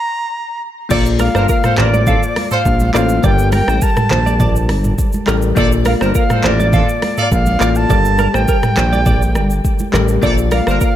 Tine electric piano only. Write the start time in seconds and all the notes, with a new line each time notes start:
0.89 A#3 F4 A4 D5
2.93 A#3 F4 A4 C5
3.23 G3 G4 A4 A#4
5.26 G3 G4 A4 A#4
5.55 A#3 F4 A4 D5
7.59 A#3 F4 A4 D5
7.89 G3 G4 A4 A#4
9.92 G3 G4 A4 A#4
10.22 A#3 F4 A4 D5